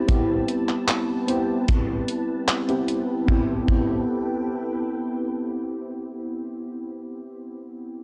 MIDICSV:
0, 0, Header, 1, 4, 480
1, 0, Start_track
1, 0, Key_signature, 0, "minor"
1, 0, Tempo, 800000
1, 50, Time_signature, 4, 2, 24, 8
1, 4821, End_track
2, 0, Start_track
2, 0, Title_t, "String machine"
2, 0, Program_c, 0, 50
2, 0, Note_on_c, 0, 55, 76
2, 0, Note_on_c, 0, 71, 69
2, 0, Note_on_c, 0, 81, 86
2, 1945, Note_off_c, 0, 71, 0
2, 1945, Note_off_c, 0, 81, 0
2, 1947, Note_off_c, 0, 55, 0
2, 1968, Note_on_c, 0, 71, 69
2, 1969, Note_on_c, 0, 69, 69
2, 1969, Note_on_c, 0, 79, 88
2, 3879, Note_off_c, 0, 69, 0
2, 3879, Note_off_c, 0, 71, 0
2, 3879, Note_off_c, 0, 79, 0
2, 4821, End_track
3, 0, Start_track
3, 0, Title_t, "Synth keys"
3, 0, Program_c, 1, 88
3, 0, Control_c, 1, 64, 127
3, 0, Note_on_c, 1, 59, 69
3, 0, Note_on_c, 1, 60, 65
3, 0, Note_on_c, 1, 64, 68
3, 0, Note_on_c, 1, 67, 78
3, 42, Note_off_c, 1, 59, 0
3, 42, Note_on_c, 1, 59, 74
3, 47, Note_off_c, 1, 60, 0
3, 47, Note_on_c, 1, 60, 70
3, 54, Note_off_c, 1, 64, 0
3, 54, Note_on_c, 1, 64, 70
3, 60, Note_off_c, 1, 67, 0
3, 60, Note_on_c, 1, 67, 88
3, 738, Note_off_c, 1, 59, 0
3, 741, Note_off_c, 1, 60, 0
3, 744, Note_off_c, 1, 64, 0
3, 747, Note_off_c, 1, 67, 0
3, 762, Note_on_c, 1, 59, 71
3, 768, Note_on_c, 1, 60, 66
3, 774, Note_on_c, 1, 64, 63
3, 779, Note_on_c, 1, 67, 78
3, 1584, Note_off_c, 1, 59, 0
3, 1587, Note_off_c, 1, 60, 0
3, 1590, Note_off_c, 1, 64, 0
3, 1593, Note_off_c, 1, 67, 0
3, 1610, Note_on_c, 1, 59, 64
3, 1613, Note_on_c, 1, 60, 57
3, 1616, Note_on_c, 1, 64, 57
3, 1619, Note_on_c, 1, 67, 71
3, 1941, Note_off_c, 1, 59, 0
3, 1942, Note_off_c, 1, 60, 0
3, 1944, Note_off_c, 1, 64, 0
3, 1945, Note_off_c, 1, 67, 0
3, 1956, Note_on_c, 1, 59, 69
3, 1965, Note_on_c, 1, 60, 67
3, 1974, Note_on_c, 1, 64, 67
3, 1977, Control_c, 1, 64, 0
3, 1984, Note_on_c, 1, 67, 82
3, 2075, Control_c, 1, 64, 127
3, 2099, Note_off_c, 1, 59, 0
3, 2104, Note_off_c, 1, 60, 0
3, 2108, Note_off_c, 1, 64, 0
3, 2113, Note_off_c, 1, 67, 0
3, 2196, Note_on_c, 1, 59, 71
3, 2205, Note_on_c, 1, 60, 69
3, 2214, Note_on_c, 1, 64, 67
3, 2223, Note_on_c, 1, 67, 80
3, 4106, Note_off_c, 1, 59, 0
3, 4116, Note_off_c, 1, 60, 0
3, 4125, Note_off_c, 1, 64, 0
3, 4134, Note_off_c, 1, 67, 0
3, 4821, End_track
4, 0, Start_track
4, 0, Title_t, "Drums"
4, 51, Note_on_c, 9, 42, 73
4, 52, Note_on_c, 9, 36, 104
4, 111, Note_off_c, 9, 42, 0
4, 112, Note_off_c, 9, 36, 0
4, 291, Note_on_c, 9, 42, 60
4, 351, Note_off_c, 9, 42, 0
4, 414, Note_on_c, 9, 39, 34
4, 474, Note_off_c, 9, 39, 0
4, 530, Note_on_c, 9, 39, 111
4, 530, Note_on_c, 9, 42, 71
4, 590, Note_off_c, 9, 39, 0
4, 590, Note_off_c, 9, 42, 0
4, 771, Note_on_c, 9, 42, 58
4, 831, Note_off_c, 9, 42, 0
4, 1010, Note_on_c, 9, 42, 70
4, 1012, Note_on_c, 9, 36, 101
4, 1070, Note_off_c, 9, 42, 0
4, 1072, Note_off_c, 9, 36, 0
4, 1250, Note_on_c, 9, 42, 60
4, 1310, Note_off_c, 9, 42, 0
4, 1490, Note_on_c, 9, 39, 105
4, 1490, Note_on_c, 9, 42, 68
4, 1550, Note_off_c, 9, 39, 0
4, 1550, Note_off_c, 9, 42, 0
4, 1613, Note_on_c, 9, 42, 32
4, 1673, Note_off_c, 9, 42, 0
4, 1730, Note_on_c, 9, 42, 58
4, 1790, Note_off_c, 9, 42, 0
4, 1970, Note_on_c, 9, 36, 98
4, 2030, Note_off_c, 9, 36, 0
4, 2210, Note_on_c, 9, 36, 96
4, 2270, Note_off_c, 9, 36, 0
4, 4821, End_track
0, 0, End_of_file